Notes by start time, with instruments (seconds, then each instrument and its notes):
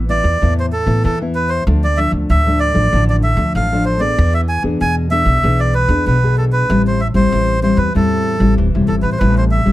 Already playing: upright bass A1
0.09 nylon-string guitar E3 B3 E4, melodica D5
0.24 upright bass E2
0.41 upright bass E2, nylon-string guitar A2 E3 B3 E4
0.60 melodica C5
0.72 melodica A4
0.86 upright bass A1, nylon-string guitar E3 B3 E4
1.04 upright bass E2, nylon-string guitar E3, melodica A4
1.21 nylon-string guitar E3 B3 E4
1.35 melodica B4
1.49 melodica C5
1.67 upright bass D2, nylon-string guitar D3 F3 A3 D4
1.84 melodica D5
1.97 nylon-string guitar F3 A3 D4, melodica E5
2.12 upright bass D2
2.30 upright bass D2, nylon-string guitar A2, melodica E5
2.46 nylon-string guitar F3 A3 D4
2.60 melodica D5
2.74 upright bass A1, nylon-string guitar F3 A3 D4
2.93 upright bass A1, nylon-string guitar D3 F3 A3 D4
3.10 melodica D5
3.23 melodica E5
3.37 upright bass D2, nylon-string guitar F3 A3 D4
3.55 upright bass A1, nylon-string guitar A2, melodica F5
3.72 nylon-string guitar F3 A3 D4
3.85 melodica C5
4.00 nylon-string guitar B3 D4 G#4, melodica D5
4.18 upright bass E2, nylon-string guitar E3
4.34 melodica E5
4.49 melodica G#5
4.63 upright bass E2, nylon-string guitar B3 D4 G#4
4.81 upright bass E2, nylon-string guitar B2, melodica G#5
5.11 nylon-string guitar B3 D4 G#4, melodica E5
5.25 upright bass B1
5.43 upright bass B1, nylon-string guitar E3 B3 D4 G#4
5.60 melodica D5
5.74 melodica B4
5.89 upright bass E2, nylon-string guitar B3 D4 G#4
6.06 upright bass B1, nylon-string guitar B2, melodica B4
6.23 nylon-string guitar B3 D4 G#4
6.38 melodica A4
6.52 melodica B4
6.70 upright bass A1, nylon-string guitar A2 G3 C4 E4
6.87 melodica C5
7.00 melodica E5
7.14 upright bass A1, nylon-string guitar G3 C4 E4, melodica C5
7.32 upright bass A1, nylon-string guitar E3
7.62 nylon-string guitar G3 C4 E4, melodica C5
7.77 upright bass E2, melodica B4
7.94 upright bass E2, nylon-string guitar A2 G3 C4 E4, melodica A4
8.39 upright bass A1, nylon-string guitar G3 C4 E4
8.58 upright bass D1, nylon-string guitar E3
8.74 upright bass E1, nylon-string guitar G3 C4 E4
8.88 upright bass G1, melodica A4
9.02 upright bass A1, melodica B4
9.12 melodica C5
9.19 upright bass A1, nylon-string guitar A2 G3 C4 E4, melodica B4
9.38 melodica C5
9.51 melodica E5
9.65 upright bass A1, nylon-string guitar G3 C4 E4